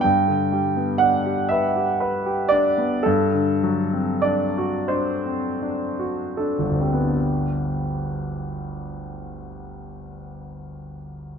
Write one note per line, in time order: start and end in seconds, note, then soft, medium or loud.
0.01 3.01 G2 soft
0.01 0.99 G5 medium
0.28 0.66 D3 soft
0.52 0.91 G3 soft
0.76 1.16 B3 soft
0.98 1.40 D4 soft
0.98 1.49 F#5 medium
1.25 1.66 G4 soft
1.49 1.91 B4 soft
1.49 2.50 E5 medium
1.76 2.16 G4 soft
2.00 2.41 B4 soft
2.26 2.67 G4 soft
2.49 2.94 D4 soft
2.49 3.04 D5 medium
2.78 3.05 B3 soft
3.03 7.12 G2 medium
3.03 4.24 A4 medium
3.33 3.81 D3 soft
3.63 4.12 F#3 soft
3.93 4.44 C4 soft
4.22 4.77 D4 soft
4.22 4.89 D5 medium
4.58 5.12 F#4 soft
4.88 5.47 D4 soft
4.88 6.39 C5 medium
5.26 5.85 C4 soft
5.62 6.24 D4 soft
5.99 6.64 F#4 soft
6.37 7.02 D4 soft
6.37 7.15 A4 soft
6.59 9.84 G1 soft
6.70 9.96 D2 soft
6.80 10.07 G3 soft
6.80 7.16 C4 soft
6.93 10.19 B3 soft
7.04 10.30 D4 soft
7.13 10.39 G4 soft